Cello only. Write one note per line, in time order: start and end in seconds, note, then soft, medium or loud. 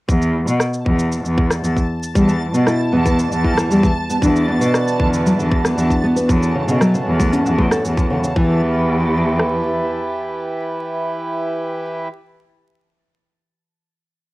0.08 0.39 E2 medium
0.47 0.55 B2 medium
0.86 1.17 E2 medium
1.25 1.56 E2 medium
1.64 1.72 E2 medium
2.15 2.46 E2 medium
2.54 2.62 B2 loud
2.93 3.24 E2 medium
3.31 3.62 E2 medium
3.70 3.78 E2 medium
4.22 4.53 E2 loud
4.61 4.69 B2 loud
5.00 5.31 E2 medium
5.38 5.69 E2 medium
5.77 5.85 E2 medium
6.29 6.60 E2 loud
6.68 6.76 B2 medium
7.07 7.38 E2 loud
7.46 7.76 E2 loud
7.84 8.15 E2 medium
8.36 9.87 E2 medium